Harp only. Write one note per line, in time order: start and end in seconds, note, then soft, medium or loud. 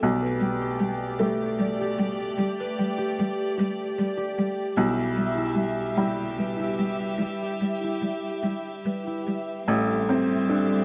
0.00 0.60 G4 medium
0.00 3.53 A4 medium
0.22 2.59 B4 medium
0.42 0.81 G5 soft
0.61 1.20 G4 medium
0.82 1.99 G5 soft
1.21 1.80 G4 medium
1.61 3.97 D5 medium
1.81 2.39 G4 medium
2.00 2.77 G5 medium
2.40 2.97 G4 medium
2.60 6.38 B4 medium
2.79 3.18 G5 medium
2.98 3.56 G4 medium
3.19 4.37 G5 medium
3.57 4.16 G4 medium
3.98 4.80 D5 medium
4.17 4.97 G4 medium
4.38 8.28 G5 medium
4.77 5.36 E4 medium
4.98 7.41 G4 medium
5.18 5.56 E5 medium
5.37 5.97 E4 medium
5.57 6.78 E5 soft
5.98 6.58 E4 medium
6.39 8.85 B4 soft
6.60 7.20 E4 medium
6.80 7.61 E5 soft
7.21 7.82 E4 medium
7.42 10.85 G4 medium
7.62 8.03 E5 soft
7.84 8.44 E4 medium
8.04 9.26 E5 soft
8.46 9.06 E4 medium
8.86 9.71 B4 soft
9.07 10.85 E4 medium
9.27 10.85 E5 soft
9.69 10.47 A4 medium
10.48 10.85 A4 medium
10.69 10.85 C5 medium